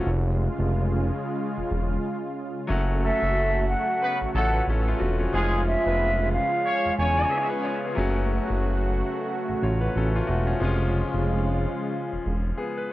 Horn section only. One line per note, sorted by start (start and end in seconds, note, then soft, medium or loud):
3.04 3.65 A3 medium
3.04 3.65 A4 loud
4.02 4.17 B3 medium
4.02 4.17 B4 loud
4.34 4.61 A3 medium
4.34 4.61 A4 loud
5.34 5.60 G#3 loud
5.34 5.60 G#4 loud
5.86 6.29 B3 medium
5.86 6.29 B4 medium
6.66 6.92 C#4 medium
6.66 6.92 C#5 loud
6.99 7.48 C#4 medium
6.99 7.48 C#5 loud